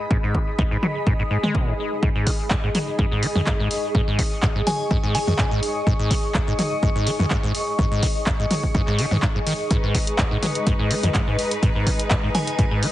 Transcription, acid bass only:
0.11 0.18 G#2 medium
0.23 0.36 G#2 medium
0.34 0.39 G#3 loud
0.58 0.63 G#2 loud
0.71 0.78 G#2 medium
0.83 0.87 F#3 medium
1.07 1.14 G#2 medium
1.19 1.23 G#2 medium
1.30 1.38 G#2 medium
1.43 1.56 G#3 loud
1.55 1.69 A#2 medium
1.67 1.74 G#2 loud
2.03 2.10 G#2 medium
2.15 2.28 G#2 medium
2.27 2.31 G#3 loud
2.51 2.55 G#2 loud
2.63 2.70 G#2 medium
2.75 2.79 F#3 medium
2.99 3.06 G#2 medium
3.12 3.24 G#2 medium
3.23 3.27 G#3 loud
3.36 3.42 F#2 medium
3.47 3.54 G#2 medium
3.60 3.69 G#2 medium
3.95 4.02 G#2 medium
4.08 4.20 G#2 medium
4.19 4.23 G#3 loud
4.43 4.47 G#2 loud
4.55 4.62 G#2 medium
4.67 4.71 F#3 medium
4.91 4.98 G#2 medium
5.03 5.16 G#2 medium
5.15 5.19 G#3 loud
5.27 5.34 F#2 medium
5.39 5.46 G#2 medium
5.51 5.61 G#2 medium
5.87 5.94 G#2 medium
5.99 6.12 G#2 medium
6.11 6.15 G#3 loud
6.35 6.39 G#2 loud
6.47 6.54 G#2 medium
6.59 6.63 F#3 medium
6.83 6.90 G#2 medium
6.95 7.08 G#2 medium
7.07 7.11 G#3 loud
7.19 7.26 F#2 medium
7.31 7.38 G#2 medium
7.43 7.53 G#2 medium
7.79 7.86 G#2 medium
7.91 8.04 G#2 medium
8.03 8.07 G#3 loud
8.27 8.31 G#2 loud
8.39 8.46 G#2 medium
8.51 8.55 F#3 medium
8.75 8.82 G#2 medium
8.87 9.00 G#2 medium
8.99 9.06 D#3 medium
9.11 9.18 G#2 medium
9.23 9.27 G#2 medium
9.35 9.39 G#2 medium
9.46 9.54 D#3 medium
9.71 9.78 G#2 medium
9.83 9.96 G#2 medium
9.95 9.99 G#3 loud
10.18 10.23 G#2 loud
10.31 10.38 G#2 medium
10.43 10.47 F#3 medium
10.67 10.74 G#2 medium
10.79 10.92 G#2 medium
10.91 10.95 G#3 loud
11.03 11.10 F#2 medium
11.15 11.22 G#2 medium
11.27 11.37 G#2 medium
11.63 11.70 G#2 medium
11.75 11.88 G#2 medium
11.87 11.91 G#3 loud
12.11 12.15 G#2 loud
12.23 12.30 G#2 medium
12.35 12.39 F#3 medium
12.59 12.66 G#2 medium
12.71 12.84 G#2 medium
12.83 12.87 G#3 loud

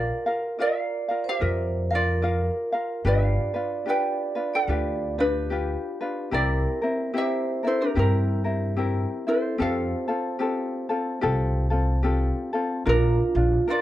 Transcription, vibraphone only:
0.00 0.56 A#4 medium
0.60 1.21 D5 medium
1.24 1.86 C5 medium
1.91 3.01 A#4 medium
3.07 3.84 D5 medium
3.89 4.50 D5 medium
4.54 5.15 D5 medium
5.19 6.29 G4 medium
6.34 7.11 A#4 medium
7.17 7.62 C5 medium
7.65 7.79 A4 medium
7.81 7.96 G4 medium
7.97 9.24 G4 medium
9.28 9.58 A4 medium
9.60 12.01 C5 medium
12.86 13.64 F4 medium
13.69 13.81 A#4 medium

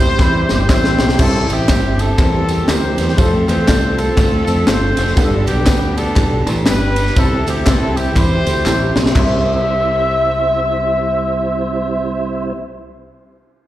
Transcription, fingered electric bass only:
0.00 0.12 D2 medium
0.19 0.45 E2 loud
0.50 0.67 G1 medium
0.69 0.95 A1 medium
1.00 1.16 B1 medium
1.19 1.45 C2 loud
1.50 1.66 A1 medium
1.70 2.12 G1 medium
2.19 2.61 E2 loud
2.69 2.94 D2 loud
2.99 3.16 E2 medium
3.18 3.44 F2 loud
3.48 3.65 E2 medium
3.69 4.11 C2 medium
4.17 4.43 D2 loud
4.48 4.65 F2 medium
4.68 4.93 G1 medium
4.97 5.14 F1 medium
5.17 5.43 G1 loud
5.47 5.64 B1 medium
5.67 6.10 D2 medium
6.17 6.42 B1 loud
6.46 6.64 A1 loud
6.67 7.09 G1 medium
7.17 7.42 C2 loud
7.46 7.63 D2 medium
7.67 8.16 C2 medium
8.16 8.41 E2 medium
8.46 8.63 D2 medium
8.66 8.91 A1 medium
8.96 9.13 B1 medium
9.16 12.52 C2 loud

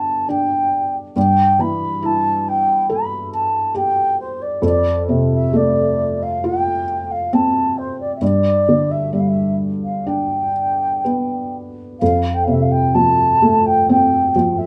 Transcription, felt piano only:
0.00 1.12 G2 soft
0.00 1.18 D3 soft
0.00 0.25 B3 soft
0.00 1.12 G4 soft
0.29 1.13 D4 soft
1.16 4.59 G2 soft
1.59 3.28 E3 soft
2.02 3.71 E4 soft
2.90 4.59 A4 soft
3.75 4.60 G4 soft
4.62 8.17 F2 medium
5.09 6.84 C3 soft
5.53 7.28 A3 soft
6.44 8.18 F4 soft
7.33 8.19 C4 soft
8.21 11.97 G2 soft
8.69 10.51 D3 soft
9.13 11.00 G3 soft
10.06 11.97 D4 soft
11.05 11.98 B3 soft
12.02 14.66 F2 soft
12.47 14.31 C3 soft
12.95 14.34 F3 soft
13.42 14.66 A3 soft
13.89 14.66 C4 soft
14.36 14.66 F3 soft

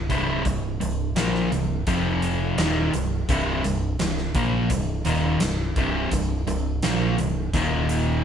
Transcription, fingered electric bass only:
0.10 0.43 C1 medium
0.45 0.78 C1 medium
0.81 1.14 C1 medium
1.16 1.49 A#1 medium
1.52 1.85 C1 medium
1.87 2.54 F1 medium
2.58 2.91 D#1 loud
2.94 3.26 C1 medium
3.29 3.62 C1 medium
3.64 3.97 C1 medium
4.00 4.33 C1 medium
4.35 4.68 A#1 medium
4.70 5.03 C1 medium
5.06 5.39 D#1 loud
5.41 5.74 C1 medium
5.76 6.09 C1 medium
6.12 6.45 C1 medium
6.47 6.80 C1 medium
6.82 7.16 A#1 loud
7.18 7.51 C1 medium
7.53 8.21 D#1 loud

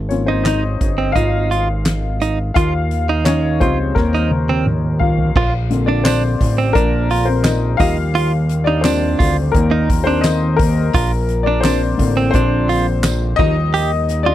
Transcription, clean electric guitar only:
0.28 0.45 D#4 medium
0.46 0.63 D#4 medium
0.98 1.15 C4 medium
1.16 1.49 D#4 medium
1.51 1.68 F4 medium
2.22 2.38 D#4 medium
2.56 2.73 F4 loud
3.09 3.25 D#4 medium
3.26 3.59 D#4 medium
3.62 3.78 F4 medium
4.14 4.30 D#4 medium
4.49 4.65 C4 medium
5.37 5.53 F4 loud
5.88 6.05 D4 medium
6.06 6.22 D4 medium
6.58 6.75 C4 medium
6.75 7.08 D4 medium
7.11 7.27 F4 medium
7.80 7.97 D#4 medium
8.15 8.32 F4 loud
8.67 8.84 D#4 medium
8.85 9.18 D4 medium
9.19 9.36 F4 medium
9.71 9.88 D#4 medium
10.07 10.24 D4 medium
10.95 11.11 F4 loud
11.47 11.64 D4 medium
11.65 11.81 D4 medium
12.17 12.33 C4 medium
12.35 12.68 D4 medium
12.69 12.86 F4 medium
13.39 13.56 D#4 medium
13.74 13.90 G4 loud
14.26 14.35 F4 medium

